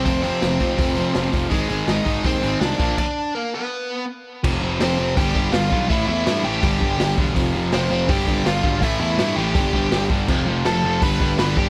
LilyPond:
<<
  \new Staff \with { instrumentName = "Lead electric guitar" } { \time 4/4 \key bes \lydian \tempo 4 = 164 <c' c''>8 <c' c''>2. r8 | <aes aes'>4 <ees' ees''>4 <c' c''>4 <d' d''>4 | <d' d''>4 <bes bes'>8 <b b'>4. r4 | \key g \mixolydian r4 <c' c''>4 <g' g''>4 <f' f''>4 |
<e' e''>8 <e' e''>4 <g' g''>2 r8 | r4 <c' c''>4 <g' g''>4 <f' f''>4 | <e' e''>8 <e' e''>4 <g' g''>2 r8 | r4 <a' a''>4 <b' b''>4 <b' b''>8 <g' g''>8 | }
  \new Staff \with { instrumentName = "Distorted electric guitar" } { \clef bass \time 4/4 \key bes \lydian <f, c f>8 <f, c f>8 <f, c f>8 <f, c f>8 <f, c f>8 <f, c f>8 <f, c f>8 <f, c f>8 | <aes, ees aes>8 <aes, ees aes>8 <aes, ees aes>8 <aes, ees aes>8 <aes, ees aes>8 <aes, ees aes>8 <aes, ees aes>8 <bes, f bes>8 | r1 | \key g \mixolydian <f, c f>8 <f, c f>8 <f, c f>8 <f, c f>8 <g, d g>8 <g, d g>8 <g, d g>8 <g, d g>8 |
<a, e a>8 <a, e a>8 <a, e a>8 <a, e a>8 <g, d g>8 <g, d g>8 <g, d g>8 <g, d g>8 | <f, c f>8 <f, c f>8 <f, c f>8 <f, c f>8 <g, d g>8 <g, d g>8 <g, d g>8 <g, d g>8 | <a, e a>8 <a, e a>8 <a, e a>8 <a, e a>8 <g, d g>8 <g, d g>8 <g, d g>8 <g, d g>8 | <f, c f>8 <f, c f>8 <f, c f>8 <f, c f>8 <g, d g>8 <g, d g>8 <g, d g>8 <g, d g>8 | }
  \new Staff \with { instrumentName = "Distorted electric guitar" } { \clef bass \time 4/4 \key bes \lydian <f, c f>8 <f, c f>8 <f, c f>8 <f, c f>8 <f, c f>8 <f, c f>8 <f, c f>8 <f, c f>8 | <aes, ees aes>8 <aes, ees aes>8 <aes, ees aes>8 <aes, ees aes>8 <aes, ees aes>8 <aes, ees aes>8 <aes, ees aes>8 <bes, f bes>8 | r1 | \key g \mixolydian <f, c f>8 <f, c f>8 <f, c f>8 <f, c f>8 <g, d g>8 <g, d g>8 <g, d g>8 <g, d g>8 |
<a, e a>8 <a, e a>8 <a, e a>8 <a, e a>8 <g, d g>8 <g, d g>8 <g, d g>8 <g, d g>8 | <f, c f>8 <f, c f>8 <f, c f>8 <f, c f>8 <g, d g>8 <g, d g>8 <g, d g>8 <g, d g>8 | <a, e a>8 <a, e a>8 <a, e a>8 <a, e a>8 <g, d g>8 <g, d g>8 <g, d g>8 <g, d g>8 | <f, c f>8 <f, c f>8 <f, c f>8 <f, c f>8 <g, d g>8 <g, d g>8 <g, d g>8 <g, d g>8 | }
  \new Staff \with { instrumentName = "Picked electric bass" } { \clef bass \time 4/4 \key bes \lydian f,,4 f,,4 f,,4 f,,8 f,,8 | aes,,8 aes,,8 aes,,8 aes,,8 ees,8 aes,,8 c,8 bes,,8 | r1 | \key g \mixolydian f,,8 f,,8 f,,8 f,,8 g,,8 g,,8 g,,8 b,,8 |
a,,8 e,8 g,8 a,,8 g,,8 g,,8 g,,8 e,,8 | f,,8 f,,8 f,,8 f,,8 g,,8 g,,8 g,,8 aes,,8 | a,,8 e,8 g,8 a,,8 g,,8 g,,8 g,,8 g,,8 | f,,8 f,,8 f,,8 f,,8 g,,8 g,,8 g,,8 g,,8 | }
  \new DrumStaff \with { instrumentName = "Drums" } \drummode { \time 4/4 <hho bd>8 hho8 <hho sn>8 <hho bd>8 <hho bd>8 hho8 <hho sn>8 <hho bd>8 | <hho bd>8 hho8 <hho sn>8 <hho bd>8 <hho bd>8 hho8 <hho sn>8 <hho bd>8 | <cymc bd>4 r4 r4 r4 | <cymc bd>4 <hho sn>4 <hho bd>8 bd8 <hho sn>8 bd8 |
<hho bd>4 <hho sn>4 <hho bd>8 bd8 <hho sn>8 bd8 | <hho bd>4 <hho sn>4 <hho bd>8 bd8 <hho sn>8 bd8 | <hho bd>4 <hho sn>4 <hho bd>8 bd8 <hho sn>8 bd8 | <cymc bd>4 <hho sn>4 <hho bd>8 bd8 <hho sn>8 bd8 | }
>>